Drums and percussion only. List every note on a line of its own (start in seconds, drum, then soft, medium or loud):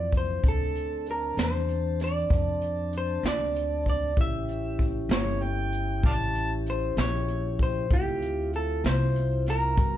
0.12 kick medium
0.12 closed hi-hat medium
0.44 kick loud
0.44 closed hi-hat medium
0.75 closed hi-hat medium
1.06 closed hi-hat medium
1.37 snare loud
1.37 closed hi-hat medium
1.68 closed hi-hat medium
2.00 snare soft
2.00 closed hi-hat medium
2.30 kick loud
2.30 closed hi-hat medium
2.61 closed hi-hat medium
2.93 closed hi-hat medium
3.24 snare loud
3.24 closed hi-hat medium
3.56 closed hi-hat medium
3.86 kick medium
3.86 closed hi-hat medium
4.17 kick medium
4.17 closed hi-hat medium
4.48 closed hi-hat medium
4.79 kick medium
4.79 closed hi-hat medium
5.10 snare loud
5.10 closed hi-hat medium
5.41 closed hi-hat medium
5.72 closed hi-hat medium
6.03 kick loud
6.03 closed hi-hat medium
6.35 closed hi-hat medium
6.66 closed hi-hat medium
6.97 snare loud
6.97 closed hi-hat medium
7.28 closed hi-hat medium
7.59 kick medium
7.59 closed hi-hat medium
7.91 kick loud
7.91 closed hi-hat medium
8.22 closed hi-hat medium
8.53 closed hi-hat medium
8.84 snare loud
8.84 closed hi-hat medium
9.16 closed hi-hat medium
9.46 snare soft
9.46 closed hi-hat medium
9.77 kick loud
9.77 closed hi-hat medium